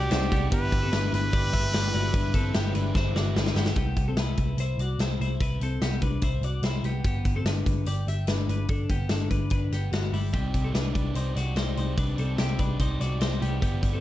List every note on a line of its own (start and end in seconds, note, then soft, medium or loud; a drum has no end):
0.00 0.12 F#4 medium
0.00 0.48 G4 loud
0.00 3.72 G4 medium
0.00 0.11 D5 medium
0.00 0.48 D5 medium
0.00 3.72 D6 medium
0.10 0.28 C2 loud
0.10 0.31 C3 medium
0.10 0.31 G3 medium
0.10 0.31 C4 medium
0.10 0.52 C4 medium
0.10 0.51 D4 soft
0.10 0.31 D#4 medium
0.10 0.32 D#4 medium
0.10 0.52 D#4 soft
0.10 0.31 G4 medium
0.10 0.31 C5 medium
0.10 0.29 D5 medium
0.10 0.52 F#5 medium
0.10 snare loud
0.10 closed hi-hat medium
0.30 0.48 C2 loud
0.30 0.51 B3 medium
0.30 0.52 C4 soft
0.30 0.52 D#4 medium
0.30 0.52 G4 soft
0.30 0.51 G4 medium
0.30 0.51 D5 medium
0.30 kick medium
0.30 closed hi-hat medium
0.52 0.69 G1 loud
0.52 0.72 G3 medium
0.52 3.73 B3 medium
0.52 0.81 B3 medium
0.52 0.72 D4 medium
0.52 3.73 D4 medium
0.52 3.73 E4 medium
0.52 0.72 E4 loud
0.52 0.80 G4 loud
0.52 3.73 G4 medium
0.52 1.09 B4 loud
0.52 0.70 B4 medium
0.52 3.74 E5 medium
0.52 3.74 B5 medium
0.52 kick loud
0.52 closed hi-hat medium
0.71 0.89 G1 loud
0.71 0.91 D4 medium
0.71 0.92 E4 medium
0.71 0.92 B4 medium
0.71 kick loud
0.71 closed hi-hat medium
0.82 0.92 C4 medium
0.82 0.92 A4 medium
0.92 1.09 G1 loud
0.92 1.12 G3 medium
0.92 1.13 D4 medium
0.92 1.31 D4 medium
0.92 1.12 E4 medium
0.92 1.30 B4 medium
0.92 1.09 B4 medium
0.92 snare loud
0.92 closed hi-hat loud
1.11 1.29 G1 loud
1.11 1.30 D4 soft
1.11 1.32 E4 medium
1.11 1.32 B4 medium
1.11 3.33 B4 loud
1.11 closed hi-hat medium
1.30 1.50 G1 loud
1.30 1.52 G3 medium
1.30 1.52 D4 medium
1.30 1.52 E4 medium
1.30 1.53 G4 medium
1.30 1.50 B4 medium
1.30 1.53 D5 medium
1.30 kick loud
1.30 closed hi-hat medium
1.51 1.70 G1 loud
1.51 1.71 D4 soft
1.51 1.72 E4 medium
1.51 1.73 G4 medium
1.51 1.72 B4 medium
1.51 1.73 E5 medium
1.51 kick medium
1.51 snare soft
1.51 closed hi-hat medium
1.72 1.90 G1 loud
1.72 1.93 G3 loud
1.72 1.93 D4 loud
1.72 1.93 E4 loud
1.72 1.94 G4 medium
1.72 1.92 B4 loud
1.72 1.93 D5 medium
1.72 snare loud
1.72 closed hi-hat medium
1.93 2.11 G1 loud
1.93 2.12 D4 soft
1.93 2.13 E4 medium
1.93 2.15 F#4 medium
1.93 2.13 B4 medium
1.93 2.14 D5 medium
1.93 closed hi-hat medium
2.12 2.30 G1 loud
2.12 2.33 G3 loud
2.12 2.33 D4 loud
2.12 2.34 D4 medium
2.12 2.32 E4 loud
2.12 2.34 B4 loud
2.12 2.30 B4 medium
2.12 kick loud
2.12 closed hi-hat medium
2.31 2.51 G1 loud
2.31 2.53 D4 medium
2.31 2.54 E4 medium
2.31 2.55 A4 medium
2.31 2.53 B4 medium
2.31 kick loud
2.31 closed hi-hat medium
2.35 2.55 C4 medium
2.53 2.71 G1 medium
2.53 2.74 G3 medium
2.53 2.75 B3 medium
2.53 2.75 D4 medium
2.53 2.75 E4 loud
2.53 2.75 G4 medium
2.53 2.73 B4 loud
2.53 snare loud
2.53 closed hi-hat loud
2.74 2.92 G1 loud
2.74 2.96 D4 medium
2.74 2.94 D4 medium
2.74 2.94 E4 medium
2.74 2.94 B4 medium
2.74 2.95 B4 medium
2.74 closed hi-hat medium
2.94 3.11 G1 loud
2.94 3.15 G3 medium
2.94 3.15 D4 medium
2.94 3.14 E4 medium
2.94 3.15 E4 medium
2.94 3.13 B4 medium
2.94 3.16 C5 medium
2.94 kick loud
2.94 snare medium
3.14 3.32 G1 loud
3.14 3.35 D4 medium
3.14 3.35 E4 medium
3.14 3.36 F#4 medium
3.14 3.35 B4 medium
3.14 3.36 D5 medium
3.14 snare medium
3.35 3.52 G1 loud
3.35 3.56 G3 medium
3.35 3.56 D4 medium
3.35 3.57 D4 medium
3.35 3.55 E4 medium
3.35 3.53 B4 loud
3.35 3.57 B4 medium
3.35 snare medium
3.46 snare medium
3.54 3.72 G1 loud
3.54 3.77 B3 medium
3.54 3.77 D4 medium
3.54 3.76 E4 medium
3.54 3.76 G4 medium
3.54 3.76 B4 medium
3.54 snare loud
3.66 snare loud
3.76 3.93 C2 medium
3.76 4.06 B3 medium
3.76 4.05 G4 medium
3.76 kick medium
3.76 closed hi-hat medium
3.96 4.14 C2 medium
3.96 kick medium
3.96 closed hi-hat medium
4.08 4.18 C4 medium
4.08 4.18 A4 medium
4.16 4.33 C2 medium
4.16 4.57 E4 medium
4.16 4.57 B4 medium
4.16 snare loud
4.16 closed hi-hat medium
4.37 4.55 C2 medium
4.37 kick medium
4.37 closed hi-hat medium
4.57 4.74 C2 medium
4.57 4.80 E4 medium
4.57 4.80 C5 medium
4.57 closed hi-hat medium
4.78 4.95 C2 medium
4.78 5.00 F#4 medium
4.78 5.00 D5 medium
4.78 closed hi-hat medium
4.99 5.16 C2 medium
4.99 5.21 E4 medium
4.99 5.20 C5 medium
4.99 snare loud
4.99 closed hi-hat medium
5.20 5.37 C2 medium
5.20 5.41 E4 soft
5.20 5.41 C5 medium
5.20 closed hi-hat medium
5.40 5.57 C2 loud
5.40 5.62 E4 medium
5.40 5.61 B4 medium
5.40 kick loud
5.40 closed hi-hat medium
5.60 5.77 C2 medium
5.60 5.82 C4 medium
5.60 5.82 A4 medium
5.60 closed hi-hat medium
5.81 5.98 C2 medium
5.81 6.02 B3 medium
5.81 6.02 G4 medium
5.81 snare medium
5.81 closed hi-hat medium
6.02 6.19 C2 medium
6.02 6.23 D4 medium
6.02 6.23 B4 medium
6.02 kick medium
6.02 closed hi-hat medium
6.22 6.39 C2 loud
6.22 6.44 E4 medium
6.22 6.43 C5 medium
6.22 kick medium
6.22 closed hi-hat medium
6.41 6.59 C2 medium
6.41 6.64 F#4 medium
6.41 6.64 D5 medium
6.41 closed hi-hat medium
6.62 6.80 C2 medium
6.62 6.85 E4 soft
6.62 6.84 C5 medium
6.62 snare medium
6.62 closed hi-hat medium
6.83 7.00 C2 medium
6.83 7.05 B3 medium
6.83 7.04 G4 medium
6.83 closed hi-hat medium
7.04 7.22 G1 medium
7.04 7.34 B3 medium
7.04 7.34 G4 medium
7.04 kick medium
7.04 closed hi-hat medium
7.25 7.42 G1 medium
7.25 kick medium
7.25 closed hi-hat medium
7.36 7.46 C4 soft
7.36 7.46 A4 medium
7.45 7.62 G1 medium
7.45 7.85 D4 medium
7.45 7.85 B4 medium
7.45 snare loud
7.45 closed hi-hat medium
7.66 7.83 G1 loud
7.66 kick medium
7.66 closed hi-hat medium
7.86 8.03 G1 medium
7.86 8.08 G4 medium
7.86 8.07 D5 medium
7.86 closed hi-hat medium
8.07 8.24 G1 medium
8.07 8.29 G4 medium
8.07 8.28 E5 medium
8.07 closed hi-hat medium
8.27 8.44 G1 medium
8.27 8.49 D4 medium
8.27 8.48 B4 medium
8.27 snare medium
8.27 closed hi-hat medium
8.48 8.65 G1 medium
8.48 8.69 D4 soft
8.48 8.69 B4 medium
8.48 closed hi-hat medium
8.68 8.86 G1 medium
8.68 8.90 D4 medium
8.68 8.90 A4 medium
8.68 kick medium
8.68 closed hi-hat medium
8.90 9.07 G1 medium
8.90 9.11 B3 medium
8.90 9.11 G4 medium
8.90 kick medium
8.90 closed hi-hat medium
9.09 9.27 G1 medium
9.09 9.30 D4 medium
9.09 9.30 A4 medium
9.09 snare loud
9.09 closed hi-hat medium
9.30 9.48 G1 medium
9.30 9.51 D4 medium
9.30 9.50 B4 medium
9.30 kick medium
9.30 closed hi-hat medium
9.50 9.68 G1 medium
9.50 9.72 D4 medium
9.50 9.72 B4 medium
9.50 kick medium
9.50 closed hi-hat medium
9.71 9.88 G1 medium
9.71 9.92 B3 medium
9.71 9.93 G4 medium
9.71 snare soft
9.71 closed hi-hat medium
9.92 10.09 G1 medium
9.92 10.14 B3 soft
9.92 10.13 F#4 medium
9.92 snare medium
9.92 closed hi-hat medium
10.12 10.35 G1 medium
10.12 10.33 G3 medium
10.12 10.34 E4 medium
10.12 open hi-hat medium
10.33 10.51 C2 loud
10.33 10.54 C3 medium
10.33 10.54 G3 medium
10.33 10.54 C4 medium
10.33 10.63 C4 medium
10.33 10.54 D#4 medium
10.33 10.63 G4 medium
10.33 10.52 G4 medium
10.33 10.51 D5 medium
10.33 kick medium
10.33 closed hi-hat medium
10.52 10.71 C2 medium
10.52 10.72 C4 soft
10.52 10.72 D#4 soft
10.52 10.73 G4 medium
10.52 10.73 D5 soft
10.52 kick medium
10.52 closed hi-hat medium
10.64 10.75 C4 medium
10.64 10.74 A4 medium
10.72 10.91 C2 medium
10.72 10.94 C3 medium
10.72 10.95 G3 medium
10.72 10.95 C4 medium
10.72 11.14 D4 medium
10.72 10.94 D#4 medium
10.72 10.94 G4 medium
10.72 11.13 B4 medium
10.72 10.92 D5 medium
10.72 snare loud
10.72 closed hi-hat medium
10.93 11.12 C2 loud
10.93 11.11 C4 soft
10.93 11.13 D#4 soft
10.93 11.14 G4 medium
10.93 11.15 D5 medium
10.93 kick medium
10.93 closed hi-hat medium
11.13 11.32 C2 medium
11.13 11.34 C4 medium
11.13 11.34 D#4 medium
11.13 11.33 G4 medium
11.13 11.36 C5 medium
11.13 11.32 D5 medium
11.13 closed hi-hat medium
11.17 11.37 D#4 medium
11.33 11.53 C2 medium
11.33 11.54 C4 soft
11.33 11.54 D#4 soft
11.33 11.55 G4 soft
11.33 11.55 D5 soft
11.33 11.57 D5 medium
11.33 snare soft
11.33 closed hi-hat medium
11.37 11.57 F#4 medium
11.54 11.73 C2 medium
11.54 11.76 C3 medium
11.54 11.76 G3 medium
11.54 11.76 C4 medium
11.54 11.75 D#4 medium
11.54 11.77 D#4 medium
11.54 11.74 G4 medium
11.54 11.77 C5 medium
11.54 11.73 D5 medium
11.54 snare loud
11.54 closed hi-hat medium
11.74 11.94 C2 medium
11.74 11.95 C4 soft
11.74 11.96 D#4 soft
11.74 11.96 G4 medium
11.74 11.98 C5 medium
11.74 11.96 D5 soft
11.74 closed hi-hat medium
11.79 11.98 D#4 soft
11.96 12.15 C2 loud
11.96 12.18 C3 medium
11.96 12.18 G3 medium
11.96 12.18 C4 medium
11.96 12.19 D4 medium
11.96 12.17 D#4 medium
11.96 12.16 G4 medium
11.96 12.19 B4 medium
11.96 12.15 D5 medium
11.96 kick loud
11.96 closed hi-hat medium
12.16 12.35 C2 medium
12.16 12.36 C4 soft
12.16 12.39 C4 medium
12.16 12.37 D#4 soft
12.16 12.37 G4 soft
12.16 12.39 A4 medium
12.16 12.37 D5 medium
12.16 closed hi-hat medium
12.36 12.56 C2 medium
12.36 12.58 C3 medium
12.36 12.59 G3 medium
12.36 12.59 C4 medium
12.36 12.60 C4 medium
12.36 12.59 D#4 medium
12.36 12.58 G4 medium
12.36 12.60 G4 medium
12.36 12.57 D5 medium
12.36 snare medium
12.36 closed hi-hat medium
12.59 12.77 C2 medium
12.59 12.78 C4 soft
12.59 12.81 D4 medium
12.59 12.79 D#4 soft
12.59 12.80 G4 medium
12.59 12.80 B4 medium
12.59 12.80 D5 soft
12.59 kick medium
12.59 closed hi-hat medium
12.79 12.97 C2 medium
12.79 13.00 C4 medium
12.79 13.01 D#4 medium
12.79 13.00 G4 medium
12.79 13.00 C5 medium
12.79 12.99 D5 medium
12.79 kick medium
12.79 closed hi-hat medium
13.00 13.17 C2 medium
13.00 13.19 C4 soft
13.00 13.20 D#4 soft
13.00 13.22 F#4 medium
13.00 13.20 G4 soft
13.00 13.20 D5 soft
13.00 13.21 D5 medium
13.00 snare soft
13.00 closed hi-hat medium
13.19 13.38 C2 medium
13.19 13.41 C3 medium
13.19 13.41 G3 medium
13.19 13.41 C4 medium
13.19 13.40 D#4 medium
13.19 13.42 D#4 soft
13.19 13.40 G4 medium
13.19 13.42 C5 medium
13.19 13.39 D5 medium
13.19 snare loud
13.19 closed hi-hat medium
13.40 13.59 C2 medium
13.40 13.62 B3 medium
13.40 13.61 C4 soft
13.40 13.62 D#4 soft
13.40 13.62 G4 soft
13.40 13.61 G4 medium
13.40 13.62 D5 soft
13.40 closed hi-hat medium
13.61 13.79 G1 medium
13.61 13.82 G3 medium
13.61 13.82 B3 medium
13.61 13.92 B3 medium
13.61 13.83 E4 medium
13.61 13.91 G4 medium
13.61 13.83 B4 medium
13.61 13.81 D5 medium
13.61 kick loud
13.61 closed hi-hat medium
13.82 14.00 G1 medium
13.82 14.00 E4 soft
13.82 14.00 B4 soft
13.82 14.00 D5 medium
13.82 kick medium
13.82 closed hi-hat medium
13.93 14.00 C4 medium
13.93 14.00 A4 medium